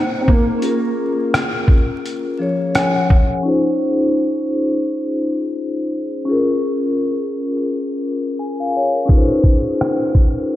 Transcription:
Already playing: vibraphone A#3 D#4 G#4 C5
0.21 felt piano C4
0.28 felt piano A#3, kick
0.59 vibraphone C#4 F4, closed hi-hat
0.63 vibraphone G#4 A#4
1.34 cross-stick, closed hi-hat
1.68 kick
2.06 closed hi-hat
2.38 vibraphone F3 C#4 G#4 C#5
2.75 vibraphone G#5, cross-stick, closed hi-hat
2.94 vibraphone F#5
3.10 kick
3.43 vibraphone C#4 D#4 F4
3.47 vibraphone G#4 C5
6.25 vibraphone C#4 F4 G#4
6.31 vibraphone A#4
8.39 vibraphone G#5
8.60 vibraphone F5
8.76 vibraphone C#5
8.95 vibraphone A#4
9.05 vibraphone C#4 D#4 F4, kick
9.10 vibraphone G#4 B4
9.18 vibraphone C5
9.44 kick, closed hi-hat
9.81 cross-stick
10.15 kick, closed hi-hat

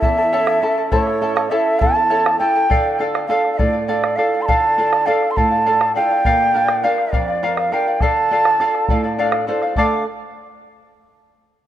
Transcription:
Already playing: nylon-string guitar C#4 E4 A4
0.01 nylon-string guitar E2, charango E4 A4 E5 A5, quena E5, bombo low
0.18 charango E4 A4 A5
0.32 nylon-string guitar C#4 E4 A4, charango E4 A4 C#5 E5 A5
0.47 bombo rim
0.62 nylon-string guitar C#4 E4 A4, charango E4 A4 E5 A5
0.78 charango E4 A4 A5
0.91 nylon-string guitar A2, charango E4 A4 C#5 E5 A5, quena C#5, bombo low
1.07 bombo rim
1.21 nylon-string guitar C#4 E4 A4, charango E4 A4 E5 A5
1.36 charango E4 A4 A5, bombo rim
1.50 nylon-string guitar C#4 E4 A4, charango E4 A4 C#5 E5 A5, quena E5, bombo rim
1.79 nylon-string guitar E2, charango E4 A4 E5 A5, quena A5, bombo low
1.95 charango E4 A4 A5
2.10 nylon-string guitar C#4 E4 A4, charango E4 A4 C#5 E5 A5
2.26 bombo rim
2.39 nylon-string guitar C#4 E4 A4, charango E4 A4 E5 A5, quena G5
2.56 charango E4 A4 A5
2.70 nylon-string guitar D3, charango A4 D5 F5, bombo low
2.99 nylon-string guitar D4 F4 A4, charango A4 D5 F5
3.14 charango D5 F5, bombo rim
3.28 nylon-string guitar D4 F4 A4, charango A4 D5 F5, quena F5
3.45 bombo rim
3.53 quena F5
3.58 nylon-string guitar A2, charango A4 D5 F5, quena D5, bombo low
3.73 charango D5 F5
3.87 nylon-string guitar D4 F4 A4, charango A4 D5 F5, quena D5
4.04 bombo rim
4.16 nylon-string guitar D4 F4 A4, charango A4 D5 F5, quena F5, bombo rim
4.33 charango D5 F5
4.42 quena C6
4.46 nylon-string guitar D3, charango A4 D5 F5, quena A5, bombo low
4.78 nylon-string guitar D4 F4 A4, charango A4 D5 F5
4.93 charango D5 F5, bombo rim
5.06 nylon-string guitar D4 F4 A4, charango A4 D5 F5, quena F5
5.23 bombo rim
5.31 quena C6
5.36 nylon-string guitar A2, charango A4 D5 F5, quena A5, bombo low
5.51 charango D5 F5
5.66 nylon-string guitar D4 F4 A4, charango A4 D5 F5
5.81 bombo rim
5.95 nylon-string guitar D4 F4 A4, charango A4 D5 F5, quena G5
6.11 charango D5 F5
6.25 nylon-string guitar A#2, charango A#4 D5 F5, bombo low
6.54 nylon-string guitar D4 F4 A#4, charango A#4 D5 F5
6.68 charango D5 F5, bombo rim
6.83 nylon-string guitar D4 F4 A#4, charango A#4 D5 F5, quena F5
6.98 bombo rim
7.12 nylon-string guitar F2, charango A#4 D5 F5, quena D5, bombo low
7.28 charango D5 F5
7.42 nylon-string guitar D4 F4 A#4, charango A#4 D5 F5
7.57 quena F5, bombo rim
7.72 nylon-string guitar D4 F4 A#4, charango A#4 D5 F5, quena G5, bombo rim
7.87 charango D5 F5
8.00 nylon-string guitar D3, charango A4 D5 F5, quena A5, bombo rim, bombo low
8.31 nylon-string guitar D4 F4 A4, charango A4 D5 F5
8.45 charango D5 F5, bombo rim
8.60 nylon-string guitar D4 F4 A4, charango A4 D5 F5, bombo rim
8.75 bombo rim
8.88 nylon-string guitar A2, charango A4 D5 F5, bombo low
9.04 charango D5 F5
9.18 nylon-string guitar D4 F4 A4 F5, charango A4 D5 F5
9.32 bombo rim
9.47 nylon-string guitar D4 F4 A4 C5, charango A4 D5 F5
9.62 charango D5 F5, bombo rim
9.76 nylon-string guitar D3 A3 D4 A4 F5 A5, charango A4 D5 F5, quena D6, bombo low

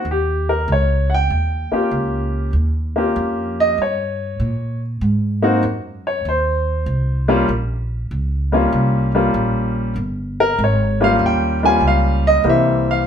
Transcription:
0.05 upright bass D#2
0.11 grand piano G4
0.49 grand piano A#4
0.68 upright bass C#2
0.72 grand piano C#5
1.10 grand piano F#5
1.14 grand piano G5
1.30 upright bass D#2
1.72 grand piano A#3 C#4 F4 G4, muted upright bass stroke
1.91 upright bass C#2
2.53 upright bass D#2
2.96 grand piano A#3 C#4 F4 G4
3.16 upright bass F2
3.60 grand piano D#5
3.78 upright bass G2, grand piano C#5
4.40 upright bass A#2
5.01 upright bass G#2
5.43 grand piano A#3 C4 D#4 F#4
5.63 upright bass F#2
6.07 grand piano C#5
6.25 upright bass D#2, grand piano C5
6.86 upright bass C2
7.28 grand piano G3 A#3 C#4 F4
7.49 upright bass A#1
8.11 upright bass C#2
8.52 grand piano G3 A#3 C#4 F4
8.72 upright bass C2
9.15 grand piano G3 A#3 C#4 F4
9.34 upright bass A#1
9.96 upright bass G1
10.40 grand piano A#4
10.58 upright bass G#1
10.64 grand piano C#5
11.01 grand piano G3 A#3 C#4 F4 F5
11.19 upright bass D#2
11.26 grand piano G5
11.63 grand piano G3 A#3 C#4 F4 G#5
11.81 upright bass C#2
11.88 grand piano F5
12.27 grand piano D#5
12.44 upright bass C2, grand piano E3 G3 A#3 C4
12.49 grand piano E5
12.91 grand piano F5

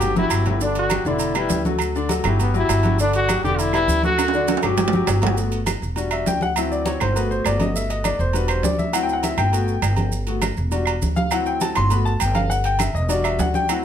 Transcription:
Already playing: upright bass G1, upright piano F#3 F#4 G4, trombone G4
0.01 high conga, low conga, low agogo, maracas
0.16 upright piano F#3 F#4 G4, trombone E4, high conga, maracas
0.30 upright bass G1, low agogo, claves, maracas
0.45 upright piano F#3 F#4 G4, trombone E4, low conga, low agogo, maracas
0.61 upright piano D3 D4 D5, trombone D4, high conga, maracas
0.75 trombone F#4, high conga, low agogo, maracas
0.90 upright piano F#3 F#4 G4, high conga, low agogo, claves, maracas
1.05 upright bass E1, upright piano D3 D4 D5, trombone E4, high conga, maracas
1.19 high conga, low agogo, maracas
1.35 upright piano G3 G4 B4, trombone E4, high conga, low agogo, claves, maracas
1.49 upright bass D2, high conga, low timbale, maracas
1.65 upright piano F#3 F#4 A4, high conga, maracas
1.79 high conga, low agogo, claves, maracas
1.95 upright piano D3 D4 D5, high conga, maracas
2.09 upright piano F#3 F#4 A4, high conga, low agogo, maracas
2.24 upright bass G1, upright piano F#3 F#4 G4, trombone E4, high conga, low conga, low agogo, claves, maracas
2.40 trombone B3, high conga, low conga, low agogo, maracas
2.54 upright piano F#3 F#4 G4, trombone E4, high conga, maracas
2.69 upright bass G1, high conga, low timbale, low agogo, claves, maracas
2.83 upright piano F#3 F#4 G4, high conga, low agogo, maracas
2.99 upright piano D3 D4 D5, trombone D4, high conga, maracas
3.13 trombone F#4, high conga, low agogo, maracas
3.29 upright piano F#3 F#4 G4, high conga, low agogo, claves, maracas
3.43 upright bass E1, upright piano D3 D4 D5, trombone G4, high conga, maracas
3.59 trombone E4, high conga, low agogo, maracas
3.73 upright piano G3 G4 B4, trombone E4, high conga, low agogo, claves, maracas
3.88 upright bass D2, high conga, maracas
4.03 upright piano F#3 F#4 A4, trombone F#4, high conga, maracas
4.18 high conga, high timbale, low agogo, claves, maracas
4.28 high timbale
4.33 upright piano D3 D4 D5, high conga, maracas
4.48 upright piano F#3 F#4 A4, high conga, high timbale, low agogo, maracas
4.57 high timbale
4.63 upright bass G1, upright piano F#3 F#4 G4, trombone G4, high conga, low conga, low agogo, claves, maracas
4.78 high conga, low timbale, low agogo, maracas
4.88 low timbale
4.92 upright piano F#3 F#4 G4, high conga, maracas
5.07 upright bass G1, low conga, low timbale, low agogo, claves, maracas
5.22 upright piano F#3 F#4 G4, low conga, low agogo, maracas
5.27 low timbale
5.37 upright piano A3 B3 F#4, high conga, maracas
5.52 high conga, low agogo, maracas
5.66 high conga, low agogo, claves, maracas
5.82 upright bass E1, high conga, maracas
5.96 upright piano G3 D4 F#4, high conga, low agogo, maracas
6.11 upright piano E5, high conga, low agogo, claves, maracas
6.26 upright bass D2, upright piano G5, high conga, low timbale, maracas
6.41 upright piano F#5, high conga, maracas
6.56 upright piano F#3 C4 E4 E5, high conga, low agogo, claves, maracas
6.71 upright piano D5, high conga, maracas
6.86 upright piano C#5, high conga, low agogo, maracas
7.00 upright bass G1, upright piano C5, high conga, low conga, low agogo, claves, maracas
7.12 upright piano A3 A#4
7.16 upright piano B3 F#4 B4, high conga, low agogo, maracas
7.30 upright piano C5, high conga, maracas
7.45 upright bass G1, upright piano D5, high conga, low timbale, low agogo, claves, maracas
7.60 upright piano D#5, high conga, low agogo, maracas
7.75 upright piano E5, high conga, maracas
7.90 upright piano D#5, high conga, low agogo, maracas
8.04 upright piano D5, high conga, low agogo, claves, maracas
8.19 upright bass E1, upright piano C5, high conga, maracas
8.33 upright piano G3 D4 F#4 B4, high conga, low agogo, maracas
8.48 upright piano C5, high conga, low agogo, claves, maracas
8.63 upright bass D2, upright piano D5, high conga, low timbale, maracas
8.79 upright piano E5, high conga, maracas
8.93 upright piano F#3 C4 E4 F#5, high conga, low agogo, claves, maracas
9.03 upright piano G5
9.09 high conga, maracas
9.13 upright piano F#5
9.23 upright piano E5, high conga, low agogo, maracas
9.38 upright bass G1, upright piano G5, high conga, low conga, low agogo, claves, maracas
9.53 upright piano A3 B3 F#4, high conga, low agogo, maracas
9.68 high conga, maracas
9.82 upright bass G1, high conga, low timbale, low agogo, claves, maracas
9.96 high conga, low agogo, maracas
10.12 high conga, maracas
10.27 upright piano A3 B3 F#4, high conga, low agogo, maracas
10.42 high conga, low agogo, claves, maracas
10.57 upright bass E1, high conga, maracas
10.71 upright piano G3 D4 F#4, high conga, low agogo, maracas
10.86 high conga, low agogo, claves, maracas
11.02 upright bass D2, high conga, maracas
11.16 upright piano F5, high conga, maracas
11.31 upright piano F#3 C4 E4 F#5, low agogo, claves, maracas
11.46 upright piano G5, high conga, maracas
11.61 upright piano A5, high conga, low agogo, maracas
11.75 upright bass G1, upright piano C6, high conga, low conga, low agogo, claves, maracas
11.90 upright piano A3 B3 F#4 B5, high conga, low conga, low agogo, maracas
12.05 upright piano A5, high conga, maracas
12.20 upright bass G1, upright piano G5, high conga, low agogo, claves, maracas
12.35 upright piano F5, high conga, low agogo, maracas
12.50 upright piano F#5, high conga, maracas
12.64 upright piano G5, high conga, low agogo, maracas
12.79 upright piano E5, high conga, low agogo, claves, maracas
12.94 upright bass E1, upright piano D#5, high conga, maracas
13.09 upright piano G3 D4 F#4 D5, high conga, low agogo, maracas
13.24 upright piano E5, high conga, low agogo, claves, maracas
13.38 upright bass D2, upright piano F#5, high conga, low timbale, maracas
13.54 upright piano G5, high conga, maracas
13.69 upright piano F#3 C4 E4 F#5, high conga, low agogo, claves, maracas

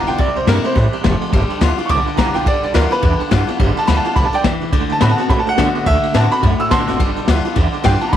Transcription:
Already playing: clean electric guitar G2 E3, steel-string acoustic guitar D3
0.07 upright bass B1, steel-string acoustic guitar B3 F4, upright piano G5, snare, ride
0.18 upright bass C2, steel-string acoustic guitar C3, clean electric guitar C3 G3, upright piano D5, kick, ride
0.36 upright bass E2, upright piano C5, ride
0.47 upright bass G2, clean electric guitar C3 A3, steel-string acoustic guitar E3 A#3 C4 E4, upright piano A#4, snare, ride
0.64 steel-string acoustic guitar C4 E4, upright piano C5, ride
0.75 upright bass A2, clean electric guitar C3 G3, steel-string acoustic guitar E3, kick, ride
0.93 ride
1.04 upright bass F1, clean electric guitar C3 A3, steel-string acoustic guitar F3, kick, snare, ride
1.21 ride
1.32 upright bass G1, clean electric guitar G2 D3, steel-string acoustic guitar G3, kick, ride
1.50 ride
1.61 upright bass D2, clean electric guitar G2 E3, steel-string acoustic guitar G3 B3 F4, snare, ride
1.78 steel-string acoustic guitar B3 F4, muted upright bass stroke, ride
1.86 steel-string acoustic guitar D3, upright piano C#6
1.90 upright bass B1, clean electric guitar G2 D3, upright piano D6, kick, ride
2.06 muted upright bass stroke, ride
2.17 upright bass F1, clean electric guitar G2 E3, steel-string acoustic guitar G3 B3 F4, upright piano A#5, kick, snare, ride
2.34 upright bass B1, steel-string acoustic guitar B3 F4, upright piano G5, snare, ride
2.46 upright bass G1, clean electric guitar G2 D3, steel-string acoustic guitar G3, upright piano D5, kick, ride
2.63 upright bass B1, upright piano D5, ride
2.74 upright bass D2, clean electric guitar G2 E3, steel-string acoustic guitar G3 B3 F4, upright piano A#4, snare, ride
2.91 steel-string acoustic guitar B3 F4, upright piano B4, ride
3.02 upright bass E2, clean electric guitar G2 D3, steel-string acoustic guitar D3, kick, ride
3.20 muted upright bass stroke, ride
3.31 clean electric guitar G2 E3, upright bass G2, steel-string acoustic guitar G3 B3 F4, kick, snare, ride
3.47 steel-string acoustic guitar B3 F4, muted upright bass stroke, ride
3.60 upright bass G1, clean electric guitar G2 D3, steel-string acoustic guitar G3, kick, ride
3.77 upright piano A5, muted upright bass stroke, ride
3.87 upright bass D2, clean electric guitar G2 E3, steel-string acoustic guitar G3 B3 F4, upright piano B5, snare, ride
3.97 upright piano A5
4.04 steel-string acoustic guitar B3 F4, upright piano A5, ride
4.16 upright bass B1, clean electric guitar G2 D3, steel-string acoustic guitar F3, upright piano B5, kick, ride
4.25 upright piano A5
4.32 upright piano D5 G5, muted upright bass stroke, ride
4.44 upright bass F1, clean electric guitar G2 E3, steel-string acoustic guitar E3, kick, snare, ride
4.61 upright bass B1, ride
4.72 upright bass D2, clean electric guitar D3 A3, steel-string acoustic guitar D3, kick, ride
4.89 upright bass F#2, upright piano A5, ride
5.00 upright bass A2, clean electric guitar D3 B3, steel-string acoustic guitar D3 A3 C4 F#4, upright piano B5, snare, ride
5.10 upright piano A5
5.18 steel-string acoustic guitar C4 F#4, upright piano A5, ride
5.29 steel-string acoustic guitar A2, upright bass B2, clean electric guitar D3 A3, upright piano B5, kick, ride
5.39 upright piano A5
5.46 upright piano F#5, muted upright bass stroke, ride
5.58 steel-string acoustic guitar D3 A3 F#4, clean electric guitar D3 B3, upright bass D3, kick, snare, ride
5.75 muted upright bass stroke, ride
5.86 upright bass D2, clean electric guitar D3 A3, steel-string acoustic guitar D3, upright piano E5, kick, ride
6.03 muted upright bass stroke, ride
6.14 upright bass A2, steel-string acoustic guitar D3 A3 C4 F#4, clean electric guitar D3 B3, upright piano A5, snare, ride
6.31 steel-string acoustic guitar C4 F#4, upright piano B5, ride
6.43 upright bass F#2, steel-string acoustic guitar A2, clean electric guitar D3 A3, kick, ride
6.59 upright piano E6, muted upright bass stroke, ride
6.70 upright bass C2, steel-string acoustic guitar D3 A3 C4 F#4, clean electric guitar D3 B3, upright piano A5 C6, kick, snare, ride
6.87 upright bass F#1, steel-string acoustic guitar C4 F#4, snare, ride
7.00 upright bass G1, clean electric guitar G2 D3, steel-string acoustic guitar G3, kick, ride
7.16 upright bass B1, ride
7.28 upright bass D2, clean electric guitar G2 E3, steel-string acoustic guitar G3 B3 F4, snare, ride
7.44 steel-string acoustic guitar B3 F4, ride
7.56 upright bass E2, clean electric guitar G2 D3, steel-string acoustic guitar D3, kick, ride
7.73 muted upright bass stroke, ride
7.84 clean electric guitar G2 E3, upright bass G2, steel-string acoustic guitar G3 B3 F4, upright piano G5, kick, snare, ride
8.01 steel-string acoustic guitar B3 F4, upright piano A5, muted upright bass stroke, ride
8.08 upright piano A#5
8.13 upright bass G1, clean electric guitar G2 D3, steel-string acoustic guitar G3, upright piano B5, kick, ride

